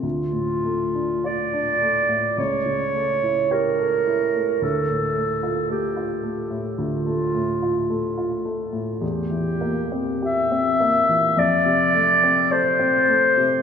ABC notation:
X:1
M:4/4
L:1/16
Q:1/4=53
K:Dm
V:1 name="Clarinet"
F4 d4 ^c4 B4 | A4 G3 z F6 z2 | G4 e4 d4 c4 |]
V:2 name="Grand piano"
D,, A,, A, D F D A, A,, ^C,, ^C, A, E G A E A, | D,, A,, A, F A, F A, A,, D,, A, A,, F A, F A, A,, | E,, E, B, C G C B, E, F,, C, A, C A C A, C, |]